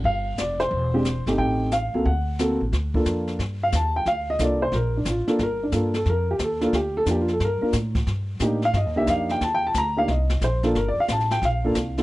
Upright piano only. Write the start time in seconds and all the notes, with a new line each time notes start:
0.05 F5
0.39 D5
0.60 C5
0.94 G#3 C4 D4 G4
1.27 A3 C4 D#4 G4
1.38 G5
1.73 F5
1.94 A#3 C4 F#4 A4
2.06 F#5
2.39 A#3 C4 F#4 A4
2.94 A#3 D4 F4 A4
3.63 F5
3.75 A5
3.96 G5
4.07 F5
4.30 D#5
4.40 A#3 D4 F4 A4 D5
4.62 C5
4.75 A#4
4.97 D4
5.09 F4
5.27 A#3 D4 F4 A4
5.43 A#4
5.63 D4
5.72 A#3 D4 F4 A4
5.96 A4
6.10 A#4
6.31 G4
6.44 A4
6.61 A#3 D4 F4 A4
6.75 G4
6.97 A4
7.06 A#3 D4 F4 A4
7.11 G4
7.22 F4
7.33 A4
7.45 A#4
7.61 A#3 D4 F4 A#4
8.41 A#3 D4 D#4 G4
8.65 F5
8.77 D#5
8.96 A#3 D4 D#4 G4 E5
9.10 F5
9.31 G5
9.43 A5
9.55 G5
9.67 A5
9.78 A#5
9.96 A#3 D4 D#4 G4 F5
10.10 D#5
10.44 C5
10.63 A#3 D4 F4 A4
10.77 A#4
10.88 D5
11.00 F5
11.12 A5
11.31 G5
11.45 F5
11.65 A#3 D4 F4 A4
11.98 A#3 D4 F4 A4